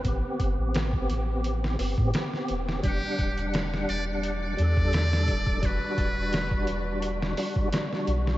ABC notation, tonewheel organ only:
X:1
M:4/4
L:1/8
Q:"Swing 16ths" 1/4=86
K:Em
V:1 name="Tonewheel organ"
[B,CG]4- [B,CG] [B,CG] [B,CG]2 | [G,Df]4- [G,Df] [G,DA]3 | [G,DF]4- [G,DF] [G,DF] [G,DF]2 |]